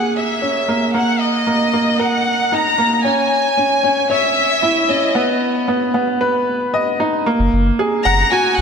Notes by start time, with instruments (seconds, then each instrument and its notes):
Already playing: upright piano A#3 G#4, violin section F#5
0.15 violin section E5
0.42 upright piano C#4
0.68 upright piano A#3
0.94 upright piano A#3, violin section F#5
1.21 violin section D#5
1.47 upright piano A#3
1.73 upright piano A#3
1.99 upright piano A#4, violin section F#5
2.52 upright piano D#4, violin section A#5
2.78 upright piano A#3
3.04 upright piano C#4, violin section G#5
3.58 upright piano C#4
3.84 upright piano C#4
4.10 upright piano C#5, violin section E5
4.63 upright piano E4
4.89 upright piano C#4, violin section D#5
5.15 upright piano B3
5.68 upright piano B3
5.94 upright piano B3
6.21 upright piano B4
6.74 upright piano D#5
7.00 upright piano D#4
7.26 upright piano A#3
7.39 sub bass F#1
7.53 sub bass F#1
7.79 upright piano G#4
8.05 sub bass F#1, upright piano F#5, violin section A#5
8.32 upright piano F#4, violin section G#5
8.58 sub bass F#1, violin section F#5